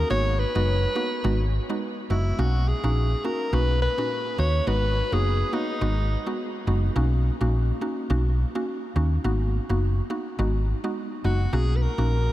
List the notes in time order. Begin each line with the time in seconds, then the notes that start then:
Already playing: A#4
0.10 G#1 A#3 B3 D#4 F#4 C#5
0.39 B4
0.55 F#1 G#3 B3 D#4 F#4
0.95 A#3 B3 D#4 F#4
1.24 G#1 G#3 B3 D#4 F#4
1.70 G#3 B3 D#4 F#4
2.10 F#1 G#3 B3 D#4 E4 F#4
2.39 B1 A#3 C#4 D#4 F#4
2.68 G#4
2.84 A#1 A#3 C#4 D#4 F#4
3.24 A#3 C#4 D#4 F#4 A#4
3.53 B1 A#3 C#4 D#4 F#4 B4
3.82 B4
3.98 A#2 C#4 D#4 F#4
4.38 D#2 A#3 C#4 D#4 F#4 C#5
4.67 G#1 G#3 B3 D#4 F#4 B4
5.12 F#1 A#3 B3 D#4 F#4 G#4
5.53 A#3 B3 D#4 F#4
5.81 G#1 G#3 B3 D#4 F#4
6.27 G#3 B3 D#4 F#4
6.67 F#1 G#3 B3 D#4 F#4
6.96 B1 A#3 C#4 D#4 F#4
7.41 A#1 A#3 C#4 D#4 F#4
7.81 A#3 C#4 D#4 F#4
8.10 B1 A#3 C#4 D#4 F#4
8.55 A#3 C#4 D#4 F#4
8.96 D#2 A#3 C#4 D#4 F#4
9.24 G#1 A#3 B3 D#4 F#4
9.69 F#1 A#3 B3 D#4 F#4
10.10 A#3 B3 D#4 F#4
10.39 G#1 G#3 B3 D#4 F#4
10.84 G#3 B3 D#4 F#4
11.24 F#1 G#3 B3 D#4 F#4
11.53 B1 A#3 C#4 D#4 F#4 G#4
11.76 B4
11.82 A#4
11.98 A#1 A#3 C#4 D#4 F#4